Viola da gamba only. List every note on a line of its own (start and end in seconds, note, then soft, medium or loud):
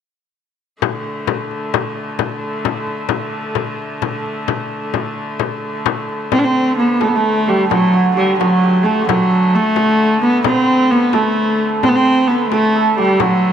6.32 6.40 C4 medium
6.39 6.46 D4 medium
6.44 6.77 C4 medium
6.78 7.04 B3 medium
7.03 7.10 A3 medium
7.08 7.17 B3 medium
7.16 7.50 A3 medium
7.48 7.69 G3 medium
7.70 8.13 F#3 medium
8.17 8.38 G3 medium
8.39 8.85 F#3 medium
8.83 9.07 A3 medium
9.08 9.56 F#3 medium
9.55 10.22 A3 medium
10.22 10.44 B3 medium
10.46 10.92 C4 medium
10.90 11.16 B3 medium
11.14 11.66 A3 medium
11.83 11.90 C4 medium
11.88 11.97 B3 medium
11.96 12.29 C4 medium
12.27 12.49 B3 medium
12.50 12.93 A3 medium
12.98 13.22 G3 medium
13.21 13.53 F#3 medium